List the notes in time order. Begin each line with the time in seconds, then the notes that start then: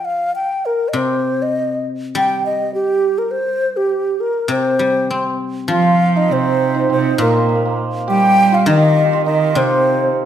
Already playing: F3
0.05 F5
0.36 G5
0.66 A#4
0.89 D#5
0.93 C3 C5
1.42 D#5
2.15 G3 G5
2.46 D#5
2.74 G4
3.18 A#4
3.31 C5
3.77 G4
4.20 A#4
4.48 C3 C5
4.79 G3
5.11 C4
5.68 F3 F4
5.72 F5
6.16 D#4 D#5
6.31 C3 C4 C5
6.75 D#4
6.90 C3 C4 C5
7.18 A#2 A#3 A#4
7.27 A#3
7.35 A#3
7.43 A#3
7.49 A#3
7.56 A#3
7.65 A#3
8.08 G3 G4 G5
8.52 F4 F5
8.66 D#3 D#4 D#5
9.09 G4
9.13 F4
9.26 D#3 D#4 D#5
9.55 C3 C4 C5